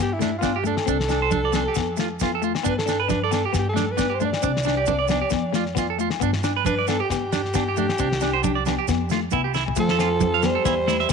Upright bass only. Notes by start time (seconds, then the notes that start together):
0.00 G2
0.88 C2
1.77 F2
2.67 G2
3.55 G2
4.44 C2
5.32 F2
6.22 G2
7.11 G2
8.00 C2
8.88 F2
9.34 C2
9.77 F2
10.66 E2